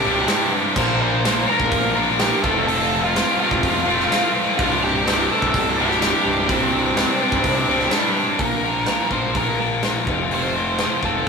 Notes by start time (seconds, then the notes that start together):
Already playing: C2 G2 G4 G5
0.05 C1 C3 G3 D4
0.28 G2 C3 G3 D4, snare, open hi-hat
0.53 C3 G3 D4
0.76 A#1 A#2 F3 A#3 D4 F4 A#4 C5 C6, kick, crash
1.02 C5 C6
1.24 A#2 F3 A#3 D4 F4 A#4, snare, open hi-hat
1.47 A#3 D4 F4 A#4
1.51 A#5
1.60 A#1, kick
1.71 A#1, kick, open hi-hat
1.95 A#3 D4 F4 A#4
2.19 A#3 D4 F4 G4 A#4 G5, snare, open hi-hat
2.43 F1 F2 C3 F3 A3 C4 F4 A4 A5, kick
2.67 F2 C3 F3 A3 C4 F4 A4 A5, open hi-hat
3.04 F4 F5
3.16 F2 C3 F3 A3 C4 F4, snare, open hi-hat
3.39 F3 A3 C4 F4 F5
3.51 F1, kick
3.63 F2, kick, open hi-hat
3.86 F1 F3 A3 C4 F4
4.00 snare
4.11 F3 A3 C4 F4, snare, open hi-hat
4.34 F3 A3 C4 F4
4.58 C1 C2 G2 C3 G3 D4 F4 F5, kick, open hi-hat
4.83 G4 G5
5.06 C2 G2 C3 G3 D4, snare, open hi-hat
5.31 C3 G3 D4 A4 A5
5.42 C1, kick
5.54 C1, kick, open hi-hat
5.77 C3 G3 D4
5.81 G4 G5
5.91 snare
6.00 G2 C3 G3 D4, snare, open hi-hat
6.25 C1 C3 G3 D4
6.48 C2 G2 C3 G3 C4 D4 C5, kick, open hi-hat
6.96 C2 G2 C3 G3 D4, snare, open hi-hat
7.20 C3 G3 D4
7.32 C1, kick
7.43 C2, kick, open hi-hat
7.68 C1 C3 G3 D4
7.80 snare
7.91 G2 C3 G3 D4, snare, open hi-hat
8.15 C3 G3 D4
8.39 A#1 A#2 F3 A#3 D4 F4 A#4, kick, open hi-hat
8.63 A#2 F3 A#3 D4 F4 A#4
8.86 A#2 F3 A#3 D4 F4 A#4, snare, open hi-hat
9.11 A#1 A#2 F3 A#3 D4 F4 A#4 C5, kick
9.35 A#1 A#2 F3 A#3 D4 F4 A#4, kick, open hi-hat
9.58 A#2 F3 A#3 D4 F4 A#4
9.82 A#2 F3 A#3 D4 F4 A#4, snare, open hi-hat
10.06 F1 F2 C3 F3 A3 C4 F4, kick
10.31 F2 C3 F3 A3 C4 F4 C5, open hi-hat
10.54 F2 C3 F3 A3 C4 F4
10.78 F2 C3 F3 A3 C4 F4, snare, open hi-hat
11.03 F1 F2 C3 F3 A3 C4 F4 A4, kick